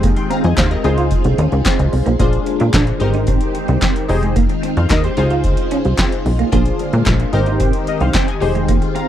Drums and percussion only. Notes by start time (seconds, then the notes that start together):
0.03 kick, closed hi-hat
0.16 closed hi-hat
0.31 closed hi-hat
0.44 closed hi-hat
0.57 kick, snare, clap, closed hi-hat
0.71 closed hi-hat
0.84 closed hi-hat
0.98 closed hi-hat
1.11 kick, closed hi-hat
1.24 closed hi-hat
1.38 closed hi-hat
1.52 closed hi-hat
1.65 kick, snare, clap, closed hi-hat
1.79 closed hi-hat
1.93 open hi-hat
2.06 closed hi-hat
2.19 kick, closed hi-hat
2.33 closed hi-hat
2.46 closed hi-hat
2.60 closed hi-hat
2.73 kick, snare, clap, closed hi-hat
2.87 closed hi-hat
3.00 closed hi-hat
3.14 closed hi-hat
3.27 kick, closed hi-hat
3.41 closed hi-hat
3.55 closed hi-hat
3.68 closed hi-hat
3.82 kick, snare, clap, closed hi-hat
3.96 closed hi-hat
4.09 open hi-hat
4.23 closed hi-hat
4.36 kick, closed hi-hat
4.49 closed hi-hat
4.63 closed hi-hat
4.77 closed hi-hat
4.90 kick, snare, clap, closed hi-hat
5.04 closed hi-hat
5.17 closed hi-hat
5.30 closed hi-hat
5.44 kick, closed hi-hat
5.57 closed hi-hat
5.71 closed hi-hat
5.85 closed hi-hat
5.98 kick, snare, clap, closed hi-hat
6.12 closed hi-hat
6.26 open hi-hat
6.39 closed hi-hat
6.52 kick, closed hi-hat
6.65 closed hi-hat
6.79 closed hi-hat
6.93 closed hi-hat
7.06 kick, snare, clap, closed hi-hat
7.20 closed hi-hat
7.33 closed hi-hat
7.46 closed hi-hat
7.60 kick, closed hi-hat
7.73 closed hi-hat
7.87 closed hi-hat
8.00 closed hi-hat
8.14 kick, snare, clap, closed hi-hat
8.28 closed hi-hat
8.42 open hi-hat
8.55 closed hi-hat
8.68 kick, closed hi-hat
8.82 closed hi-hat
8.96 closed hi-hat